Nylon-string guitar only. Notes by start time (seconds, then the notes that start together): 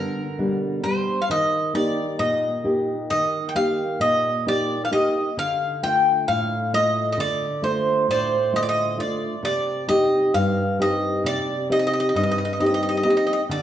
Already playing: D3 G3 B3 D4
0.38 B2 G3 D4
0.83 G3 D4
1.29 D#3
1.74 A#3 D#4 G4
2.19 A#2
2.64 A#3 D#4 G4
3.11 D#3
3.55 A#3 D#4 G4
4.00 A#2
4.46 A#3 D#4 G4
4.91 A#3 D#4 G4
5.37 D3
5.83 A3 D4 F4
6.28 A2
6.73 A3 F4
7.17 D3
7.62 A3 D4 F4
8.08 A2
8.52 D3 A3 F4
8.98 A3 D4 F4
9.43 C3
9.88 C4 D#4 G4
10.34 G2
10.79 C4 D#4 G4
11.24 C3
11.69 C4 D#4 G4
12.15 G2
12.60 C4 D#4 G4
13.04 C4 D#4 G4
13.49 D3